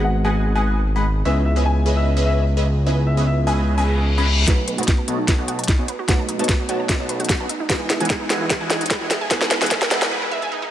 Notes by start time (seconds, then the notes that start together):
Already playing: G#1 G#3 B3 D#4 F#4 B4
0.04 F#5
0.25 G#3 G#4 B4 D#5 F#5 G#5
0.55 G#3 G#4 B4 D#5 F#5 G#5
0.96 G#3 G#4 B4 D#5 F#5 B5
1.24 C#2 G#3 B3 C#4 E4 G#4 B4 D#5 E5
1.45 E5
1.54 G#3 B3 C#4 E4 G#4 B4 D#5 E5
1.66 G#5
1.86 C#4 G#4 B4 D#5 E5
1.96 E5
2.17 C#4 G#4 B4 D#5 E5
2.26 E5
2.57 C#4 G#4 B4 D#5 E5
2.85 G#3 B3 C#4 E4 G#4 B4 D#5 E5
3.07 E5
3.15 G#3 B3 C#4 E4 G#4 B4 D#5 E5
3.27 E5
3.47 C#4 G#4 B4 D#5 E5 G#5
3.67 reverse cymbal
3.78 C#4 G#4 B4 D#5 E5 G#5
4.18 C#4 G#4 B4 D#5 E5 B5
4.46 B1 A3 B3 D#4 F#4 B4 C#5 D#5 A5, kick, snare, closed hi-hat, riser
4.58 D#4
4.68 B4, closed hi-hat
4.76 B1 A3 B3 D#4 F#4 B4 C#5 D#5 A5, closed hi-hat
4.83 closed hi-hat
4.88 F#5, kick, snare, closed hi-hat
4.98 A5
5.08 B1 B3 D#4 F#4 C#5 D#5 A5, closed hi-hat
5.18 D#4
5.28 B4, kick, snare, closed hi-hat
5.39 B1 B3 F#4 C#5 D#5 A5
5.48 F#5, closed hi-hat
5.59 A5, closed hi-hat
5.64 closed hi-hat
5.68 D#4, kick, snare, closed hi-hat
5.79 B1 B3 D#4 F#4 C#5 D#5 G#5
5.88 B4, closed hi-hat
5.99 F#4
6.07 B1 A3 B3 D#4 F#4 B4 C#5 D#5 F#5 A5, kick, snare, closed hi-hat
6.19 A5
6.29 D#4, closed hi-hat
6.37 B1 A3 B3 D#4 F#4 C#5 D#5 A5, closed hi-hat
6.41 B4, closed hi-hat
6.49 B4, kick, snare, closed hi-hat
6.60 F#4
6.69 B1 B3 F#4 C#5 D#5 F#5 A5, closed hi-hat
6.80 A5
6.89 D#4, kick, snare, closed hi-hat
7.00 B1 B3 D#4 F#4 C#5 D#5 A5
7.09 B4, closed hi-hat
7.20 F#4, closed hi-hat
7.25 closed hi-hat
7.29 F#5, kick, snare, closed hi-hat
7.40 B1 B3 F#4 C#5 D#5 G#5 A5
7.49 D#4, closed hi-hat
7.60 D#4
7.68 E1 E3 G#3 B3 D#4 E4 B4 D#5 F#5 G#5, kick, snare, closed hi-hat
7.80 E4
7.90 E5, snare, closed hi-hat
7.98 E1 E3 G#3 B3 D#4 E4 D#5 F#5 G#5, closed hi-hat
8.02 B4, closed hi-hat
8.10 D#4, kick, snare, closed hi-hat
8.21 D#4
8.30 E1 E3 E4 B4 D#5 F#5 G#5, snare, closed hi-hat
8.41 E4
8.50 E5, kick, snare, closed hi-hat
8.61 E1 E3 E4 D#5 F#5 G#5
8.70 D#4, snare, closed hi-hat
8.81 D#4, closed hi-hat
8.86 closed hi-hat
8.90 B4, kick, snare, closed hi-hat
9.01 E1 E3 E4 D#5 F#5 G#5
9.11 E5, snare, closed hi-hat
9.21 G#5
9.30 E1 E3 G#3 B3 D#4 E4 B4 D#5 F#5 G#5, kick, snare, closed hi-hat
9.41 D#4, snare
9.51 B4, snare, closed hi-hat
9.59 E1 E3 G#3 B3 D#4 E4 D#5 F#5 G#5, snare, closed hi-hat
9.63 B4, closed hi-hat
9.71 E5, kick, snare, closed hi-hat
9.82 G#5, snare
9.91 E1 E3 D#4 E4 D#5 F#5 G#5, snare, closed hi-hat
10.02 D#4, snare
10.11 B4
10.22 E4
10.31 E5
10.42 G#5
10.52 D#4
10.62 D#4